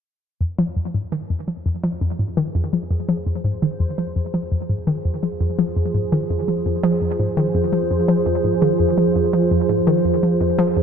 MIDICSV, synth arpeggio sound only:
0, 0, Header, 1, 2, 480
1, 0, Start_track
1, 0, Key_signature, -4, "minor"
1, 0, Tempo, 714286
1, 275, Time_signature, 4, 2, 24, 8
1, 7276, End_track
2, 0, Start_track
2, 0, Title_t, "Synth arpeggio sound"
2, 0, Program_c, 0, 84
2, 273, Note_on_c, 0, 41, 72
2, 346, Note_off_c, 0, 41, 0
2, 393, Note_on_c, 0, 53, 89
2, 437, Note_off_c, 0, 53, 0
2, 514, Note_on_c, 0, 41, 67
2, 586, Note_off_c, 0, 41, 0
2, 634, Note_on_c, 0, 44, 66
2, 706, Note_off_c, 0, 44, 0
2, 753, Note_on_c, 0, 51, 94
2, 825, Note_off_c, 0, 51, 0
2, 874, Note_on_c, 0, 41, 68
2, 917, Note_off_c, 0, 41, 0
2, 992, Note_on_c, 0, 53, 70
2, 1101, Note_off_c, 0, 53, 0
2, 1114, Note_on_c, 0, 41, 66
2, 1186, Note_off_c, 0, 41, 0
2, 1233, Note_on_c, 0, 53, 94
2, 1277, Note_off_c, 0, 53, 0
2, 1353, Note_on_c, 0, 41, 70
2, 1425, Note_off_c, 0, 41, 0
2, 1473, Note_on_c, 0, 44, 69
2, 1546, Note_off_c, 0, 44, 0
2, 1593, Note_on_c, 0, 51, 89
2, 1666, Note_off_c, 0, 51, 0
2, 1714, Note_on_c, 0, 41, 78
2, 1757, Note_off_c, 0, 41, 0
2, 1835, Note_on_c, 0, 53, 69
2, 1942, Note_off_c, 0, 53, 0
2, 1953, Note_on_c, 0, 41, 69
2, 2025, Note_off_c, 0, 41, 0
2, 2074, Note_on_c, 0, 53, 92
2, 2117, Note_off_c, 0, 53, 0
2, 2194, Note_on_c, 0, 41, 70
2, 2266, Note_off_c, 0, 41, 0
2, 2314, Note_on_c, 0, 44, 71
2, 2386, Note_off_c, 0, 44, 0
2, 2435, Note_on_c, 0, 51, 92
2, 2506, Note_off_c, 0, 51, 0
2, 2554, Note_on_c, 0, 41, 70
2, 2597, Note_off_c, 0, 41, 0
2, 2675, Note_on_c, 0, 53, 76
2, 2782, Note_off_c, 0, 53, 0
2, 2796, Note_on_c, 0, 41, 67
2, 2867, Note_off_c, 0, 41, 0
2, 2915, Note_on_c, 0, 53, 91
2, 2958, Note_off_c, 0, 53, 0
2, 3035, Note_on_c, 0, 41, 67
2, 3106, Note_off_c, 0, 41, 0
2, 3155, Note_on_c, 0, 44, 77
2, 3226, Note_off_c, 0, 44, 0
2, 3273, Note_on_c, 0, 51, 90
2, 3345, Note_off_c, 0, 51, 0
2, 3395, Note_on_c, 0, 41, 69
2, 3438, Note_off_c, 0, 41, 0
2, 3514, Note_on_c, 0, 53, 67
2, 3621, Note_off_c, 0, 53, 0
2, 3633, Note_on_c, 0, 41, 75
2, 3705, Note_off_c, 0, 41, 0
2, 3754, Note_on_c, 0, 53, 93
2, 3797, Note_off_c, 0, 53, 0
2, 3874, Note_on_c, 0, 41, 74
2, 3946, Note_off_c, 0, 41, 0
2, 3995, Note_on_c, 0, 44, 69
2, 4066, Note_off_c, 0, 44, 0
2, 4115, Note_on_c, 0, 51, 93
2, 4186, Note_off_c, 0, 51, 0
2, 4234, Note_on_c, 0, 41, 69
2, 4277, Note_off_c, 0, 41, 0
2, 4356, Note_on_c, 0, 53, 71
2, 4462, Note_off_c, 0, 53, 0
2, 4474, Note_on_c, 0, 41, 69
2, 4546, Note_off_c, 0, 41, 0
2, 4593, Note_on_c, 0, 53, 99
2, 4637, Note_off_c, 0, 53, 0
2, 4714, Note_on_c, 0, 41, 67
2, 4786, Note_off_c, 0, 41, 0
2, 4835, Note_on_c, 0, 44, 72
2, 4906, Note_off_c, 0, 44, 0
2, 4953, Note_on_c, 0, 51, 92
2, 5025, Note_off_c, 0, 51, 0
2, 5071, Note_on_c, 0, 41, 76
2, 5116, Note_off_c, 0, 41, 0
2, 5191, Note_on_c, 0, 53, 66
2, 5300, Note_off_c, 0, 53, 0
2, 5313, Note_on_c, 0, 41, 69
2, 5385, Note_off_c, 0, 41, 0
2, 5432, Note_on_c, 0, 53, 91
2, 5476, Note_off_c, 0, 53, 0
2, 5551, Note_on_c, 0, 41, 78
2, 5625, Note_off_c, 0, 41, 0
2, 5673, Note_on_c, 0, 44, 69
2, 5745, Note_off_c, 0, 44, 0
2, 5792, Note_on_c, 0, 51, 96
2, 5865, Note_off_c, 0, 51, 0
2, 5912, Note_on_c, 0, 41, 68
2, 5956, Note_off_c, 0, 41, 0
2, 6032, Note_on_c, 0, 53, 74
2, 6141, Note_off_c, 0, 53, 0
2, 6153, Note_on_c, 0, 41, 70
2, 6225, Note_off_c, 0, 41, 0
2, 6272, Note_on_c, 0, 53, 88
2, 6316, Note_off_c, 0, 53, 0
2, 6393, Note_on_c, 0, 41, 69
2, 6465, Note_off_c, 0, 41, 0
2, 6513, Note_on_c, 0, 44, 81
2, 6585, Note_off_c, 0, 44, 0
2, 6634, Note_on_c, 0, 51, 95
2, 6706, Note_off_c, 0, 51, 0
2, 6753, Note_on_c, 0, 41, 73
2, 6797, Note_off_c, 0, 41, 0
2, 6875, Note_on_c, 0, 53, 66
2, 6982, Note_off_c, 0, 53, 0
2, 6993, Note_on_c, 0, 41, 78
2, 7065, Note_off_c, 0, 41, 0
2, 7114, Note_on_c, 0, 53, 91
2, 7157, Note_off_c, 0, 53, 0
2, 7235, Note_on_c, 0, 41, 73
2, 7276, Note_off_c, 0, 41, 0
2, 7276, End_track
0, 0, End_of_file